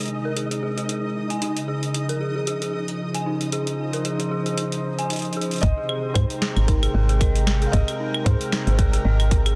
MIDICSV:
0, 0, Header, 1, 7, 480
1, 0, Start_track
1, 0, Key_signature, -4, "major"
1, 0, Tempo, 526316
1, 1293, Time_signature, 4, 2, 24, 8
1, 8713, End_track
2, 0, Start_track
2, 0, Title_t, "Felt piano"
2, 0, Program_c, 0, 0
2, 5119, Note_on_c, 0, 75, 117
2, 5572, Note_off_c, 0, 75, 0
2, 5599, Note_on_c, 0, 72, 99
2, 6052, Note_off_c, 0, 72, 0
2, 6080, Note_on_c, 0, 70, 98
2, 6545, Note_off_c, 0, 70, 0
2, 6559, Note_on_c, 0, 70, 92
2, 6914, Note_off_c, 0, 70, 0
2, 6983, Note_on_c, 0, 77, 87
2, 7038, Note_on_c, 0, 75, 113
2, 7046, Note_off_c, 0, 77, 0
2, 7492, Note_off_c, 0, 75, 0
2, 7517, Note_on_c, 0, 72, 100
2, 7919, Note_off_c, 0, 72, 0
2, 7943, Note_on_c, 0, 72, 70
2, 7997, Note_on_c, 0, 70, 99
2, 8006, Note_off_c, 0, 72, 0
2, 8463, Note_off_c, 0, 70, 0
2, 8477, Note_on_c, 0, 70, 92
2, 8713, Note_off_c, 0, 70, 0
2, 8713, End_track
3, 0, Start_track
3, 0, Title_t, "Synth texture"
3, 0, Program_c, 1, 99
3, 0, Note_on_c, 1, 63, 85
3, 0, Note_on_c, 1, 75, 83
3, 5135, Note_on_c, 1, 67, 89
3, 5135, Note_on_c, 1, 82, 89
3, 5144, Note_off_c, 1, 63, 0
3, 5144, Note_off_c, 1, 75, 0
3, 8713, Note_off_c, 1, 67, 0
3, 8713, Note_off_c, 1, 82, 0
3, 8713, End_track
4, 0, Start_track
4, 0, Title_t, "Synth bell"
4, 0, Program_c, 2, 98
4, 228, Note_on_c, 2, 70, 72
4, 278, Note_off_c, 2, 70, 0
4, 332, Note_on_c, 2, 68, 78
4, 439, Note_off_c, 2, 68, 0
4, 466, Note_on_c, 2, 68, 71
4, 551, Note_off_c, 2, 68, 0
4, 572, Note_on_c, 2, 68, 95
4, 696, Note_off_c, 2, 68, 0
4, 707, Note_on_c, 2, 68, 95
4, 801, Note_off_c, 2, 68, 0
4, 812, Note_on_c, 2, 68, 76
4, 877, Note_off_c, 2, 68, 0
4, 1187, Note_on_c, 2, 80, 73
4, 1287, Note_off_c, 2, 80, 0
4, 1292, Note_on_c, 2, 63, 74
4, 1357, Note_off_c, 2, 63, 0
4, 1532, Note_on_c, 2, 68, 91
4, 1597, Note_off_c, 2, 68, 0
4, 1907, Note_on_c, 2, 70, 72
4, 1958, Note_off_c, 2, 70, 0
4, 2013, Note_on_c, 2, 68, 73
4, 2119, Note_off_c, 2, 68, 0
4, 2148, Note_on_c, 2, 68, 69
4, 2231, Note_off_c, 2, 68, 0
4, 2254, Note_on_c, 2, 68, 96
4, 2376, Note_off_c, 2, 68, 0
4, 2387, Note_on_c, 2, 68, 94
4, 2482, Note_off_c, 2, 68, 0
4, 2493, Note_on_c, 2, 68, 70
4, 2557, Note_off_c, 2, 68, 0
4, 2868, Note_on_c, 2, 80, 71
4, 2968, Note_off_c, 2, 80, 0
4, 2974, Note_on_c, 2, 63, 73
4, 3037, Note_off_c, 2, 63, 0
4, 3214, Note_on_c, 2, 68, 93
4, 3278, Note_off_c, 2, 68, 0
4, 3588, Note_on_c, 2, 70, 73
4, 3638, Note_off_c, 2, 70, 0
4, 3694, Note_on_c, 2, 68, 78
4, 3800, Note_off_c, 2, 68, 0
4, 3828, Note_on_c, 2, 68, 74
4, 3911, Note_off_c, 2, 68, 0
4, 3933, Note_on_c, 2, 68, 97
4, 4056, Note_off_c, 2, 68, 0
4, 4067, Note_on_c, 2, 68, 95
4, 4162, Note_off_c, 2, 68, 0
4, 4173, Note_on_c, 2, 68, 81
4, 4237, Note_off_c, 2, 68, 0
4, 4547, Note_on_c, 2, 80, 74
4, 4648, Note_off_c, 2, 80, 0
4, 4653, Note_on_c, 2, 63, 77
4, 4717, Note_off_c, 2, 63, 0
4, 4894, Note_on_c, 2, 68, 96
4, 4957, Note_off_c, 2, 68, 0
4, 5267, Note_on_c, 2, 68, 78
4, 5351, Note_off_c, 2, 68, 0
4, 5373, Note_on_c, 2, 68, 100
4, 5501, Note_off_c, 2, 68, 0
4, 5614, Note_on_c, 2, 63, 83
4, 5741, Note_off_c, 2, 63, 0
4, 5854, Note_on_c, 2, 68, 102
4, 5917, Note_off_c, 2, 68, 0
4, 6093, Note_on_c, 2, 63, 86
4, 6200, Note_off_c, 2, 63, 0
4, 6227, Note_on_c, 2, 68, 101
4, 6311, Note_off_c, 2, 68, 0
4, 6333, Note_on_c, 2, 70, 101
4, 6440, Note_off_c, 2, 70, 0
4, 6468, Note_on_c, 2, 68, 103
4, 6551, Note_off_c, 2, 68, 0
4, 6574, Note_on_c, 2, 75, 85
4, 6680, Note_off_c, 2, 75, 0
4, 6948, Note_on_c, 2, 68, 78
4, 7032, Note_off_c, 2, 68, 0
4, 7053, Note_on_c, 2, 68, 100
4, 7181, Note_off_c, 2, 68, 0
4, 7293, Note_on_c, 2, 63, 76
4, 7421, Note_off_c, 2, 63, 0
4, 7533, Note_on_c, 2, 68, 103
4, 7597, Note_off_c, 2, 68, 0
4, 7773, Note_on_c, 2, 63, 78
4, 7879, Note_off_c, 2, 63, 0
4, 7907, Note_on_c, 2, 68, 101
4, 7991, Note_off_c, 2, 68, 0
4, 8013, Note_on_c, 2, 70, 105
4, 8120, Note_off_c, 2, 70, 0
4, 8147, Note_on_c, 2, 68, 103
4, 8231, Note_off_c, 2, 68, 0
4, 8253, Note_on_c, 2, 75, 78
4, 8360, Note_off_c, 2, 75, 0
4, 8628, Note_on_c, 2, 68, 77
4, 8711, Note_off_c, 2, 68, 0
4, 8713, End_track
5, 0, Start_track
5, 0, Title_t, "Analog synth pad"
5, 0, Program_c, 3, 89
5, 0, Note_on_c, 3, 48, 76
5, 0, Note_on_c, 3, 56, 72
5, 0, Note_on_c, 3, 70, 89
5, 1293, Note_off_c, 3, 48, 0
5, 1293, Note_off_c, 3, 56, 0
5, 1293, Note_on_c, 3, 49, 72
5, 1767, Note_on_c, 3, 53, 77
5, 1928, Note_on_c, 3, 72, 82
5, 2101, Note_on_c, 3, 63, 92
5, 2524, Note_off_c, 3, 70, 0
5, 5132, Note_on_c, 3, 48, 80
5, 5133, Note_off_c, 3, 49, 0
5, 5134, Note_off_c, 3, 53, 0
5, 5466, Note_on_c, 3, 79, 77
5, 5602, Note_on_c, 3, 56, 79
5, 6658, Note_off_c, 3, 63, 0
5, 6681, Note_off_c, 3, 72, 0
5, 6771, Note_on_c, 3, 70, 92
5, 8713, Note_off_c, 3, 48, 0
5, 8713, Note_off_c, 3, 56, 0
5, 8713, Note_off_c, 3, 70, 0
5, 8713, Note_off_c, 3, 79, 0
5, 8713, End_track
6, 0, Start_track
6, 0, Title_t, "FM bass"
6, 0, Program_c, 4, 39
6, 5133, Note_on_c, 4, 32, 101
6, 5219, Note_off_c, 4, 32, 0
6, 5613, Note_on_c, 4, 44, 91
6, 5699, Note_off_c, 4, 44, 0
6, 5987, Note_on_c, 4, 32, 82
6, 6272, Note_off_c, 4, 32, 0
6, 6333, Note_on_c, 4, 32, 104
6, 6992, Note_off_c, 4, 32, 0
6, 7053, Note_on_c, 4, 32, 98
6, 7139, Note_off_c, 4, 32, 0
6, 7533, Note_on_c, 4, 44, 91
6, 7619, Note_off_c, 4, 44, 0
6, 7908, Note_on_c, 4, 32, 82
6, 8192, Note_off_c, 4, 32, 0
6, 8253, Note_on_c, 4, 32, 105
6, 8713, Note_off_c, 4, 32, 0
6, 8713, End_track
7, 0, Start_track
7, 0, Title_t, "Drums"
7, 8, Note_on_c, 9, 42, 41
7, 29, Note_off_c, 9, 42, 0
7, 29, Note_on_c, 9, 42, 32
7, 50, Note_off_c, 9, 42, 0
7, 50, Note_on_c, 9, 42, 26
7, 71, Note_off_c, 9, 42, 0
7, 71, Note_on_c, 9, 42, 22
7, 163, Note_off_c, 9, 42, 0
7, 333, Note_on_c, 9, 42, 77
7, 424, Note_off_c, 9, 42, 0
7, 468, Note_on_c, 9, 42, 52
7, 559, Note_off_c, 9, 42, 0
7, 707, Note_on_c, 9, 42, 35
7, 799, Note_off_c, 9, 42, 0
7, 813, Note_on_c, 9, 42, 79
7, 904, Note_off_c, 9, 42, 0
7, 1187, Note_on_c, 9, 42, 36
7, 1279, Note_off_c, 9, 42, 0
7, 1293, Note_on_c, 9, 42, 77
7, 1385, Note_off_c, 9, 42, 0
7, 1428, Note_on_c, 9, 42, 51
7, 1519, Note_off_c, 9, 42, 0
7, 1668, Note_on_c, 9, 42, 35
7, 1759, Note_off_c, 9, 42, 0
7, 1773, Note_on_c, 9, 42, 77
7, 1864, Note_off_c, 9, 42, 0
7, 1908, Note_on_c, 9, 42, 50
7, 2000, Note_off_c, 9, 42, 0
7, 2254, Note_on_c, 9, 42, 78
7, 2345, Note_off_c, 9, 42, 0
7, 2388, Note_on_c, 9, 42, 52
7, 2479, Note_off_c, 9, 42, 0
7, 2628, Note_on_c, 9, 42, 35
7, 2719, Note_off_c, 9, 42, 0
7, 2868, Note_on_c, 9, 42, 50
7, 2959, Note_off_c, 9, 42, 0
7, 3108, Note_on_c, 9, 42, 37
7, 3199, Note_off_c, 9, 42, 0
7, 3213, Note_on_c, 9, 42, 74
7, 3304, Note_off_c, 9, 42, 0
7, 3347, Note_on_c, 9, 42, 50
7, 3438, Note_off_c, 9, 42, 0
7, 3587, Note_on_c, 9, 42, 34
7, 3678, Note_off_c, 9, 42, 0
7, 3693, Note_on_c, 9, 42, 76
7, 3784, Note_off_c, 9, 42, 0
7, 3827, Note_on_c, 9, 42, 49
7, 3918, Note_off_c, 9, 42, 0
7, 4067, Note_on_c, 9, 42, 34
7, 4159, Note_off_c, 9, 42, 0
7, 4173, Note_on_c, 9, 42, 76
7, 4264, Note_off_c, 9, 42, 0
7, 4307, Note_on_c, 9, 42, 49
7, 4398, Note_off_c, 9, 42, 0
7, 4547, Note_on_c, 9, 42, 33
7, 4638, Note_off_c, 9, 42, 0
7, 4652, Note_on_c, 9, 42, 70
7, 4679, Note_off_c, 9, 42, 0
7, 4679, Note_on_c, 9, 42, 56
7, 4707, Note_off_c, 9, 42, 0
7, 4707, Note_on_c, 9, 42, 47
7, 4733, Note_off_c, 9, 42, 0
7, 4733, Note_on_c, 9, 42, 39
7, 4761, Note_off_c, 9, 42, 0
7, 4761, Note_on_c, 9, 42, 31
7, 4788, Note_off_c, 9, 42, 0
7, 4788, Note_on_c, 9, 42, 22
7, 4858, Note_off_c, 9, 42, 0
7, 4858, Note_on_c, 9, 42, 30
7, 4938, Note_off_c, 9, 42, 0
7, 4938, Note_on_c, 9, 42, 40
7, 5028, Note_off_c, 9, 42, 0
7, 5028, Note_on_c, 9, 42, 32
7, 5049, Note_off_c, 9, 42, 0
7, 5049, Note_on_c, 9, 42, 27
7, 5070, Note_off_c, 9, 42, 0
7, 5070, Note_on_c, 9, 42, 23
7, 5091, Note_off_c, 9, 42, 0
7, 5091, Note_on_c, 9, 42, 19
7, 5113, Note_off_c, 9, 42, 0
7, 5113, Note_on_c, 9, 42, 15
7, 5133, Note_off_c, 9, 42, 0
7, 5133, Note_on_c, 9, 36, 121
7, 5133, Note_on_c, 9, 42, 82
7, 5224, Note_off_c, 9, 36, 0
7, 5224, Note_off_c, 9, 42, 0
7, 5373, Note_on_c, 9, 75, 56
7, 5464, Note_off_c, 9, 75, 0
7, 5613, Note_on_c, 9, 36, 107
7, 5613, Note_on_c, 9, 42, 85
7, 5613, Note_on_c, 9, 75, 88
7, 5704, Note_off_c, 9, 36, 0
7, 5704, Note_off_c, 9, 42, 0
7, 5704, Note_off_c, 9, 75, 0
7, 5747, Note_on_c, 9, 42, 55
7, 5838, Note_off_c, 9, 42, 0
7, 5853, Note_on_c, 9, 38, 119
7, 5945, Note_off_c, 9, 38, 0
7, 5987, Note_on_c, 9, 42, 38
7, 5987, Note_on_c, 9, 75, 55
7, 6079, Note_off_c, 9, 42, 0
7, 6079, Note_off_c, 9, 75, 0
7, 6093, Note_on_c, 9, 36, 119
7, 6093, Note_on_c, 9, 42, 83
7, 6184, Note_off_c, 9, 36, 0
7, 6184, Note_off_c, 9, 42, 0
7, 6228, Note_on_c, 9, 42, 55
7, 6228, Note_on_c, 9, 75, 81
7, 6319, Note_off_c, 9, 42, 0
7, 6319, Note_off_c, 9, 75, 0
7, 6468, Note_on_c, 9, 42, 38
7, 6559, Note_off_c, 9, 42, 0
7, 6573, Note_on_c, 9, 36, 119
7, 6574, Note_on_c, 9, 42, 81
7, 6574, Note_on_c, 9, 75, 53
7, 6664, Note_off_c, 9, 36, 0
7, 6665, Note_off_c, 9, 42, 0
7, 6665, Note_off_c, 9, 75, 0
7, 6708, Note_on_c, 9, 42, 56
7, 6799, Note_off_c, 9, 42, 0
7, 6813, Note_on_c, 9, 38, 121
7, 6813, Note_on_c, 9, 75, 83
7, 6904, Note_off_c, 9, 38, 0
7, 6904, Note_off_c, 9, 75, 0
7, 6948, Note_on_c, 9, 42, 39
7, 7039, Note_off_c, 9, 42, 0
7, 7053, Note_on_c, 9, 36, 110
7, 7053, Note_on_c, 9, 42, 84
7, 7144, Note_off_c, 9, 42, 0
7, 7145, Note_off_c, 9, 36, 0
7, 7188, Note_on_c, 9, 42, 55
7, 7188, Note_on_c, 9, 75, 54
7, 7279, Note_off_c, 9, 42, 0
7, 7279, Note_off_c, 9, 75, 0
7, 7428, Note_on_c, 9, 75, 80
7, 7519, Note_off_c, 9, 75, 0
7, 7533, Note_on_c, 9, 36, 124
7, 7534, Note_on_c, 9, 42, 86
7, 7624, Note_off_c, 9, 36, 0
7, 7625, Note_off_c, 9, 42, 0
7, 7668, Note_on_c, 9, 42, 56
7, 7759, Note_off_c, 9, 42, 0
7, 7774, Note_on_c, 9, 38, 125
7, 7774, Note_on_c, 9, 75, 54
7, 7865, Note_off_c, 9, 38, 0
7, 7865, Note_off_c, 9, 75, 0
7, 7908, Note_on_c, 9, 42, 38
7, 7999, Note_off_c, 9, 42, 0
7, 8013, Note_on_c, 9, 36, 127
7, 8013, Note_on_c, 9, 42, 82
7, 8104, Note_off_c, 9, 36, 0
7, 8105, Note_off_c, 9, 42, 0
7, 8148, Note_on_c, 9, 42, 56
7, 8239, Note_off_c, 9, 42, 0
7, 8388, Note_on_c, 9, 42, 38
7, 8388, Note_on_c, 9, 75, 52
7, 8480, Note_off_c, 9, 42, 0
7, 8480, Note_off_c, 9, 75, 0
7, 8493, Note_on_c, 9, 36, 107
7, 8493, Note_on_c, 9, 42, 82
7, 8584, Note_off_c, 9, 36, 0
7, 8584, Note_off_c, 9, 42, 0
7, 8627, Note_on_c, 9, 42, 57
7, 8627, Note_on_c, 9, 75, 79
7, 8713, Note_off_c, 9, 42, 0
7, 8713, Note_off_c, 9, 75, 0
7, 8713, End_track
0, 0, End_of_file